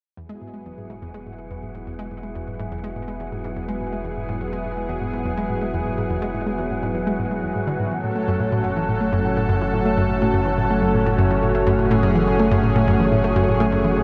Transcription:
0.17 7.89 E1 medium
0.17 0.24 E2 medium
0.17 14.03 F#3 medium
0.17 7.88 B3 medium
0.17 7.88 E4 medium
0.17 14.03 F#4 medium
0.17 7.88 G#4 medium
0.17 14.03 F#5 medium
0.29 0.36 G#3 medium
0.42 0.48 G#2 medium
0.54 0.60 G#3 medium
0.66 0.72 E2 medium
0.78 0.87 G#2 medium
0.90 0.96 G#2 medium
1.02 1.08 E2 medium
1.14 1.20 G#3 medium
1.26 1.33 G#2 medium
1.39 1.45 G#3 medium
1.51 1.57 E2 medium
1.63 1.72 G#2 medium
1.75 1.81 G#2 loud
1.87 1.93 E2 medium
1.99 2.05 G#3 medium
2.11 2.17 G#2 medium
2.23 2.29 G#3 medium
2.35 2.41 E2 medium
2.47 2.57 G#2 medium
2.60 2.66 G#2 medium
2.72 2.78 E2 medium
2.84 2.90 G#3 medium
2.96 3.02 G#2 medium
3.08 3.14 G#3 medium
3.20 3.26 E2 medium
3.32 3.41 G#2 medium
3.44 3.50 G#2 medium
3.56 3.62 E2 medium
3.68 3.75 G#3 medium
3.81 3.87 G#2 medium
3.93 3.99 G#3 medium
4.05 4.11 E2 medium
4.17 4.26 G#2 medium
4.29 4.35 G#2 medium
4.41 4.47 E2 medium
4.53 4.59 G#3 medium
4.65 4.71 G#2 medium
4.77 4.83 G#3 medium
4.89 4.95 E2 medium
5.01 5.11 G#2 medium
5.13 5.20 G#2 medium
5.25 5.32 E2 medium
5.37 5.44 G#3 medium
5.50 5.56 G#2 medium
5.61 5.68 G#3 medium
5.74 5.80 E2 medium
5.86 5.95 G#2 medium
5.98 6.04 G#2 medium
6.10 6.16 E2 medium
6.22 6.28 G#3 medium
6.34 6.41 G#2 medium
6.46 6.53 G#3 medium
6.58 6.65 E2 medium
6.70 6.80 G#2 medium
6.83 6.89 G#2 medium
6.95 7.01 E2 medium
7.07 7.13 G#3 medium
7.19 7.25 G#2 medium
7.31 7.37 G#3 medium
7.43 7.53 E2 medium
7.55 7.65 G#2 medium
7.67 7.74 D3 medium
7.79 7.86 G#2 medium
7.91 14.03 F#1 medium
7.91 7.98 E3 medium
7.91 14.03 A3 medium
7.91 14.03 C#4 medium
7.91 11.75 A4 medium
8.04 8.10 A2 medium
8.16 8.22 A3 medium
8.28 8.34 F#2 loud
8.40 8.49 A2 medium
8.52 8.58 A2 medium
8.64 8.70 F#2 medium
8.76 8.82 E3 medium
8.88 8.95 A2 medium
9.01 9.07 A3 medium
9.13 9.19 F#2 medium
9.25 9.34 A2 medium
9.37 9.43 A2 medium
9.49 9.55 F#2 medium
9.61 9.67 E3 medium
9.73 9.79 A2 medium
9.85 9.92 A3 medium
9.97 10.04 F#2 medium
10.09 10.19 A2 medium
10.22 10.28 A2 medium
10.34 10.40 F#2 medium
10.46 10.52 E3 medium
10.58 10.64 A2 medium
10.70 10.76 A3 medium
10.82 10.88 F#2 medium
10.94 11.03 A2 medium
11.06 11.12 A2 medium
11.18 11.25 F#2 medium
11.31 11.37 E3 medium
11.43 11.49 A2 medium
11.55 11.61 A3 medium
11.67 11.73 F#2 medium
11.79 11.88 A2 medium
11.79 14.03 G#4 medium
11.91 11.97 A2 medium
12.03 12.09 F#2 medium
12.15 12.21 E3 medium
12.27 12.33 A2 medium
12.39 12.45 A3 medium
12.51 12.58 F#2 medium
12.64 12.73 A2 medium
12.76 12.82 A2 medium
12.88 12.94 F#2 medium
13.00 13.06 E3 medium
13.12 13.18 A2 medium
13.24 13.30 A3 medium
13.36 13.42 F#2 loud
13.48 13.57 A2 medium
13.60 13.66 A2 loud
13.72 13.78 F#2 medium
13.84 13.91 E3 medium
13.96 14.03 A2 medium

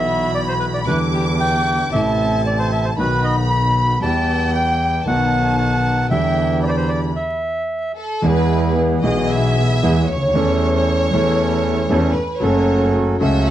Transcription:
0.00 0.82 B1 medium
0.00 0.82 B2 medium
0.00 0.81 E3 soft
0.00 0.82 F#3 soft
0.00 0.82 B3 medium
0.00 0.82 B3 soft
0.00 0.82 E4 medium
0.00 0.82 F#4 medium
0.00 0.83 F#4 medium
0.00 0.31 E5 medium
0.00 0.83 B5 medium
0.35 0.40 D5 medium
0.48 0.54 C5 medium
0.59 0.66 B4 medium
0.74 0.80 D5 medium
0.86 1.88 E2 medium
0.86 1.87 D3 soft
0.86 1.88 E3 medium
0.86 1.88 G3 soft
0.86 1.89 B3 soft
0.86 1.87 D4 medium
0.86 1.87 E4 medium
0.86 1.88 G4 medium
0.86 0.99 B4 medium
0.86 1.92 D6 loud
0.91 1.89 E4 medium
1.14 1.25 G4 medium
1.40 1.89 G5 medium
1.92 2.93 A1 medium
1.92 2.93 A2 medium
1.92 2.92 C3 soft
1.92 2.93 E3 soft
1.92 2.94 A3 soft
1.92 2.93 C4 medium
1.92 2.93 E4 medium
1.92 2.94 E4 medium
1.92 2.93 A4 medium
1.92 2.42 E5 medium
1.92 2.98 A5 medium
2.46 2.58 D5 medium
2.59 2.71 C5 medium
2.72 2.85 E5 medium
2.84 2.90 C5 medium
2.96 3.97 B1 medium
2.96 3.97 B2 medium
2.96 3.96 D#3 soft
2.96 3.97 F#3 soft
2.96 3.97 B3 medium
2.96 3.98 B3 soft
2.96 3.97 D#4 medium
2.96 3.97 F#4 medium
2.96 3.26 B4 medium
2.96 3.98 B5 medium
3.01 3.99 F#4 medium
3.24 3.36 D#5 medium
3.50 3.99 B5 medium
4.02 5.01 E2 medium
4.02 5.01 E3 medium
4.02 5.01 G3 soft
4.02 5.02 B3 medium
4.02 5.02 B3 soft
4.02 5.02 E4 medium
4.02 5.02 G4 medium
4.02 5.03 G5 medium
4.02 4.51 A5 loud
4.55 5.03 G5 medium
5.06 6.06 B1 medium
5.06 6.06 B2 medium
5.06 6.05 D#3 medium
5.06 6.06 F#3 soft
5.06 6.06 B3 medium
5.06 6.06 B3 soft
5.06 6.06 D#4 medium
5.06 6.06 F#4 medium
5.06 6.07 F#4 medium
5.06 5.56 F#5 medium
5.06 6.11 A5 medium
5.57 6.06 F#5 medium
6.09 7.11 E2 medium
6.09 7.10 D3 soft
6.09 7.12 E3 medium
6.09 7.11 G3 soft
6.09 7.12 B3 soft
6.09 7.11 D4 medium
6.09 7.11 E4 soft
6.09 7.11 G4 medium
6.09 6.60 E5 medium
6.09 6.59 G5 medium
6.13 7.12 E4 medium
6.63 6.65 D5 medium
6.63 7.16 B5 medium
6.67 6.70 C5 medium
6.67 6.76 D5 medium
6.77 6.91 C5 medium
6.88 7.01 D5 medium
7.16 7.92 E5 medium
7.96 8.21 A4 medium
8.22 8.99 E2 medium
8.22 9.00 E2 medium
8.22 9.00 E3 medium
8.22 8.99 G#3 medium
8.22 8.99 B3 medium
8.22 9.00 B3 medium
8.22 8.99 E4 medium
8.22 9.00 G#4 medium
8.22 9.01 G#4 medium
8.22 8.77 B4 medium
9.02 9.78 B1 medium
9.02 9.79 B1 medium
9.02 9.79 B2 medium
9.02 9.78 E3 medium
9.02 9.78 G#3 medium
9.02 9.78 B3 medium
9.02 9.79 B3 medium
9.02 9.78 E4 medium
9.02 9.79 G#4 medium
9.02 9.28 D#5 medium
9.06 9.80 G#4 medium
9.29 10.08 E5 loud
9.82 10.04 E2 medium
9.82 10.05 E2 medium
9.82 10.05 E3 medium
9.82 10.04 G#3 medium
9.82 10.05 B3 medium
9.82 10.05 E4 medium
9.82 10.05 G#4 medium
10.06 10.34 D2 medium
10.06 12.15 C#5 loud
10.16 10.22 C#2 medium
10.23 10.29 D2 medium
10.28 10.35 D#2 medium
10.33 11.09 E2 medium
10.33 10.34 E3 medium
10.33 11.09 E3 medium
10.33 11.08 A3 medium
10.33 11.09 C#4 medium
10.33 11.09 E4 medium
10.33 11.09 A4 medium
10.33 11.10 A4 medium
11.11 11.86 E2 medium
11.11 11.87 E2 medium
11.11 11.12 E3 medium
11.11 11.87 E3 medium
11.11 11.86 A3 medium
11.11 11.86 C#4 medium
11.11 11.87 C#4 medium
11.11 11.86 E4 medium
11.11 11.87 A4 medium
11.15 11.88 A4 medium
11.90 12.12 E2 loud
11.90 12.12 E2 medium
11.90 12.12 E3 medium
11.90 12.12 A3 medium
11.90 12.12 C#4 medium
11.90 12.12 E4 medium
11.90 12.12 A4 medium
12.14 12.41 B4 medium
12.40 13.16 F#1 medium
12.40 13.16 F#2 medium
12.40 13.17 F#3 medium
12.40 13.16 A3 medium
12.40 13.17 C#4 medium
12.40 13.17 F#4 medium
12.40 13.17 A4 loud
12.40 13.18 A4 medium
12.40 12.94 C#5 medium
13.19 13.51 C#2 medium
13.19 13.51 C#3 medium
13.19 13.51 F#3 medium
13.19 13.51 A3 medium
13.19 13.51 C#4 medium
13.19 13.51 F#4 medium
13.19 13.51 A4 medium
13.19 13.45 E5 medium
13.47 13.51 F#5 loud

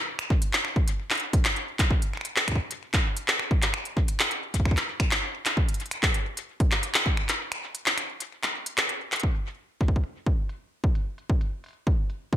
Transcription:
0.19 finger snap medium
0.19 closed hi-hat soft
0.30 kick loud
0.42 closed hi-hat medium
0.53 clap loud
0.65 finger snap soft
0.76 kick loud
0.88 closed hi-hat medium
1.10 finger snap soft
1.10 clap medium
1.10 closed hi-hat soft
1.13 closed hi-hat soft
1.15 closed hi-hat soft
1.17 closed hi-hat soft
1.20 closed hi-hat soft
1.33 kick loud
1.33 closed hi-hat medium
1.45 finger snap medium
1.45 clap loud
1.56 closed hi-hat soft
1.79 kick loud
1.79 clap medium
1.79 closed hi-hat medium
1.91 kick loud
2.02 closed hi-hat soft
2.13 finger snap soft
2.17 finger snap soft
2.21 finger snap soft
2.21 closed hi-hat medium
2.36 clap loud
2.48 finger snap medium
2.48 kick soft
2.48 closed hi-hat soft
2.52 kick medium
2.55 kick medium
2.71 closed hi-hat medium
2.94 finger snap soft
2.94 kick loud
2.94 clap medium
2.94 closed hi-hat soft
3.17 closed hi-hat medium
3.28 clap loud
3.39 finger snap soft
3.51 kick loud
3.62 clap medium
3.62 closed hi-hat medium
3.74 finger snap medium
3.85 closed hi-hat soft
3.97 kick loud
4.08 closed hi-hat medium
4.20 finger snap medium
4.20 clap loud
4.31 closed hi-hat soft
4.54 kick soft
4.54 closed hi-hat medium
4.60 kick medium
4.65 finger snap soft
4.65 kick medium
4.71 kick medium
4.77 clap medium
4.77 closed hi-hat soft
5.00 finger snap medium
5.00 kick loud
5.00 closed hi-hat medium
5.11 clap loud
5.46 finger snap medium
5.46 clap medium
5.46 closed hi-hat medium
5.57 kick loud
5.69 closed hi-hat soft
5.74 closed hi-hat soft
5.80 closed hi-hat soft
5.86 closed hi-hat soft
5.91 finger snap medium
5.91 closed hi-hat medium
6.03 kick loud
6.03 clap loud
6.14 closed hi-hat medium
6.37 closed hi-hat medium
6.60 kick loud
6.60 closed hi-hat soft
6.72 finger snap medium
6.72 clap medium
6.83 closed hi-hat medium
6.94 clap loud
7.06 kick loud
7.17 finger snap medium
7.29 clap medium
7.29 closed hi-hat medium
7.52 finger snap medium
7.52 closed hi-hat soft
7.75 closed hi-hat medium
7.86 clap loud
7.97 finger snap medium
7.97 closed hi-hat medium
8.20 closed hi-hat medium
8.43 finger snap medium
8.43 clap medium
8.43 closed hi-hat soft
8.66 closed hi-hat medium
8.78 finger snap medium
8.78 clap loud
8.89 closed hi-hat soft
9.12 clap medium
9.12 closed hi-hat soft
9.16 closed hi-hat soft
9.20 closed hi-hat soft
9.23 kick medium
9.23 closed hi-hat soft
9.27 closed hi-hat soft
9.31 closed hi-hat medium
9.35 closed hi-hat soft
9.81 kick loud
9.88 kick medium
9.96 kick medium
10.04 closed hi-hat medium
10.26 kick medium
10.26 closed hi-hat soft
10.49 closed hi-hat medium
10.84 kick loud
10.95 closed hi-hat medium
11.18 closed hi-hat soft
11.30 kick medium
11.41 closed hi-hat medium
11.64 closed hi-hat soft
11.66 closed hi-hat soft
11.68 closed hi-hat soft
11.71 closed hi-hat soft
11.73 closed hi-hat soft
11.87 kick loud
11.87 closed hi-hat medium
12.10 closed hi-hat soft
12.33 kick loud
12.33 closed hi-hat medium

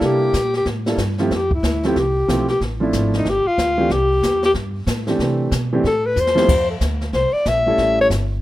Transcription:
0.00 0.33 C3 medium
0.00 0.31 G3 medium
0.00 0.32 A#3 medium
0.00 0.32 D4 medium
0.00 0.32 E4 medium
0.00 0.32 A4 medium
0.00 brush sweep medium
0.00 kick soft
0.00 snare soft
0.05 0.56 G4 medium
0.33 0.65 A#2 medium
0.33 kick soft
0.33 snare medium
0.33 hi-hat pedal medium
0.54 0.67 G4 medium
0.54 snare soft
0.65 0.97 A2 medium
0.65 brush sweep soft
0.65 kick soft
0.65 snare soft
0.86 0.97 G3 medium
0.86 0.98 A#3 medium
0.86 0.98 D4 medium
0.86 0.98 E4 medium
0.86 0.98 A4 medium
0.86 snare soft
0.98 1.29 G2 medium
0.98 kick soft
0.98 snare medium
0.98 hi-hat pedal soft
1.18 1.30 F3 medium
1.18 1.31 A3 medium
1.18 1.31 C4 medium
1.18 1.31 E4 medium
1.18 1.36 E4 soft
1.18 1.31 G4 medium
1.18 snare soft
1.31 1.62 F2 medium
1.31 brush sweep medium
1.31 kick soft
1.31 snare soft
1.35 1.53 G4 medium
1.51 1.99 E4 medium
1.51 kick medium
1.63 1.95 D2 medium
1.63 kick soft
1.63 snare medium
1.63 hi-hat pedal soft
1.83 1.95 F3 medium
1.83 1.95 A3 medium
1.83 1.96 C4 medium
1.83 1.96 E4 medium
1.83 1.96 G4 medium
1.83 snare soft
1.96 2.27 C2 medium
1.96 2.49 G4 medium
1.96 brush sweep medium
1.96 kick soft
1.96 snare soft
2.28 2.60 B1 medium
2.28 2.46 F3 medium
2.28 2.46 A3 medium
2.28 2.47 C4 medium
2.28 2.47 E4 soft
2.28 2.47 G4 medium
2.28 kick soft
2.28 snare medium
2.28 hi-hat pedal medium
2.48 2.60 G4 medium
2.48 snare soft
2.61 2.92 A1 medium
2.61 brush sweep soft
2.61 kick soft
2.61 snare soft
2.80 3.23 F3 medium
2.80 3.23 A3 medium
2.80 3.23 C4 medium
2.80 3.23 D4 medium
2.80 3.24 E4 medium
2.93 3.24 G#1 medium
2.93 kick soft
2.93 snare medium
2.93 hi-hat pedal medium
3.13 3.31 D#4 medium
3.13 snare soft
3.25 3.44 G1 medium
3.25 3.49 G4 loud
3.25 brush sweep soft
3.25 kick soft
3.25 snare soft
3.46 3.94 F4 medium
3.46 muted upright bass stroke soft
3.58 3.89 D2 medium
3.58 kick soft
3.58 snare medium
3.58 hi-hat pedal medium
3.78 3.89 E3 medium
3.78 3.89 A3 medium
3.78 3.89 C4 medium
3.78 3.90 D4 medium
3.78 3.90 G4 medium
3.90 4.21 C2 medium
3.90 4.43 G4 medium
3.90 brush sweep soft
3.90 kick soft
3.90 snare soft
4.23 4.54 E2 medium
4.23 kick soft
4.23 snare medium
4.23 hi-hat pedal medium
4.43 4.52 G4 medium
4.43 snare soft
4.54 4.86 G2 medium
4.54 brush sweep soft
4.54 kick soft
4.54 snare soft
4.87 5.18 A2 medium
4.87 kick soft
4.87 snare medium
4.87 hi-hat pedal medium
5.07 5.49 E3 medium
5.07 5.50 A3 medium
5.07 5.49 C4 medium
5.07 5.50 D4 medium
5.07 5.50 G4 medium
5.07 snare soft
5.19 5.50 C3 medium
5.19 brush sweep soft
5.19 kick soft
5.19 snare soft
5.51 5.83 B2 medium
5.51 kick soft
5.51 snare medium
5.51 hi-hat pedal medium
5.73 5.83 E3 medium
5.73 5.83 A3 medium
5.73 5.84 C4 medium
5.73 5.84 D4 medium
5.73 5.84 G4 medium
5.84 6.15 A2 medium
5.84 6.07 A4 medium
5.84 brush sweep medium
5.84 kick soft
5.84 snare soft
6.06 6.22 B4 medium
6.16 6.47 E2 medium
6.16 6.70 C5 medium
6.16 hi-hat pedal medium
6.27 snare medium
6.35 6.47 F3 medium
6.35 6.47 A3 medium
6.35 6.47 C4 medium
6.35 6.47 E4 medium
6.35 6.48 G4 medium
6.35 snare medium
6.48 6.80 F2 medium
6.48 brush sweep soft
6.48 kick medium
6.48 snare soft
6.48 crash medium
6.70 6.76 A4 soft
6.81 7.12 D2 medium
6.81 kick soft
6.81 snare medium
6.81 hi-hat pedal medium
7.01 snare soft
7.13 7.31 C2 medium
7.13 7.34 C5 medium
7.13 brush sweep soft
7.13 kick soft
7.13 snare soft
7.32 7.49 D5 medium
7.32 muted upright bass stroke soft
7.46 7.77 A#1 medium
7.46 7.99 E5 medium
7.46 kick soft
7.46 snare medium
7.46 hi-hat pedal soft
7.67 8.08 G3 medium
7.67 8.08 A3 medium
7.67 8.08 C#4 medium
7.67 8.09 E4 medium
7.67 8.09 A4 medium
7.78 8.09 A1 medium
7.78 brush sweep soft
7.78 kick soft
7.78 snare soft
8.01 8.07 C#5 loud
8.10 8.41 G1 medium
8.10 kick soft
8.10 snare medium
8.10 hi-hat pedal soft

